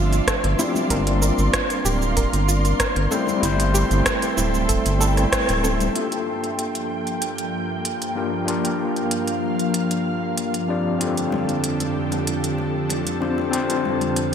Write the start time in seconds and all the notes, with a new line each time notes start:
Already playing: G1 F3 A3 C4 D4 F4 D5 E5 C6
0.13 closed hi-hat, cabasa
0.27 A4, kick, cross-stick, closed hi-hat, cabasa
0.44 G1, closed hi-hat
0.58 F3 A3 C4 D4 E4 G4, high conga, cabasa
0.75 high conga, low conga, cabasa
0.88 G1 G3 A#3 C4 D4 A#4 F5, kick, closed hi-hat, cabasa
0.93 F4
1.07 closed hi-hat
1.22 A#4, cabasa
1.38 G1, cabasa
1.53 F4, kick, cross-stick, closed hi-hat, cabasa
1.70 closed hi-hat, cabasa
1.85 D1 G4, cabasa
2.02 cabasa
2.17 A#4, kick, closed hi-hat, cabasa
2.33 G1, closed hi-hat, cabasa
2.48 F4, cabasa
2.65 closed hi-hat, cabasa
2.79 A#4, kick, cross-stick, closed hi-hat, cabasa
2.96 G1, closed hi-hat
3.10 G3 A3 C4 E4 A4 C5 E5 G5, high conga, cabasa
3.27 high conga, low conga, cabasa
3.40 G1 G3 A3 C4 E4, kick, closed hi-hat, cabasa
3.45 C5
3.60 closed hi-hat, cabasa
3.74 G4, cabasa
3.91 G1, closed hi-hat, cabasa
4.06 A4, kick, cross-stick, closed hi-hat, cabasa
4.22 closed hi-hat, cabasa
4.37 D1 E4, cabasa
4.54 cabasa
4.69 A4, kick, closed hi-hat, cabasa
4.86 G1, closed hi-hat, cabasa
4.98 G3 A3 C4 E4 A4, cabasa
5.03 A4
5.17 cross-stick, closed hi-hat, high conga, cabasa
5.32 C5, kick, cross-stick, closed hi-hat, cabasa
5.49 D1, closed hi-hat, cabasa
5.64 A4, high conga, cabasa
5.80 closed hi-hat, high conga, low conga, cabasa
5.93 G2 F3 A#3 D4 F4 G4 G5, closed hi-hat
5.98 A4
6.12 closed hi-hat
6.44 closed hi-hat
6.59 closed hi-hat
6.75 closed hi-hat
7.07 closed hi-hat
7.22 closed hi-hat
7.38 closed hi-hat
7.85 closed hi-hat
8.02 closed hi-hat
8.15 A#3 D4 F4 G4 A#4
8.46 A#3 D4 F4 G4 F5, closed hi-hat
8.50 A#4
8.65 closed hi-hat
8.96 closed hi-hat
9.11 closed hi-hat
9.27 closed hi-hat
9.59 closed hi-hat
9.74 closed hi-hat
9.91 closed hi-hat
10.38 closed hi-hat
10.54 closed hi-hat
10.68 F2 D3 C4 D4 F4 G4 A4 D5
10.99 C4 D4 F4 G4, closed hi-hat, high bongo
11.03 A4
11.17 closed hi-hat
11.32 high bongo, low conga
11.49 closed hi-hat
11.64 closed hi-hat
11.80 closed hi-hat, high bongo
12.12 closed hi-hat, high bongo
12.27 closed hi-hat
12.44 closed hi-hat
12.58 high bongo
12.89 closed hi-hat, high bongo
13.07 closed hi-hat
13.20 C4 D4 F4 G4 C5, high conga
13.38 high bongo, high conga
13.51 C4 D4 F4 G4, closed hi-hat
13.56 C5
13.70 closed hi-hat, high bongo
13.85 low conga
14.01 closed hi-hat
14.16 closed hi-hat, high bongo